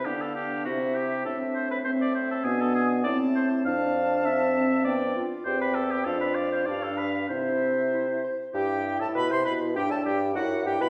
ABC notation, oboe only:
X:1
M:2/4
L:1/16
Q:1/4=100
K:C
V:1 name="Oboe"
G A G2 ^F2 G2 | A2 c B c d c A | ^G A G2 d2 c2 | f4 e4 |
d3 z c B A G | A B d c d A B2 | c6 z2 | G3 A B c B2 |
G A G2 ^F2 G B |]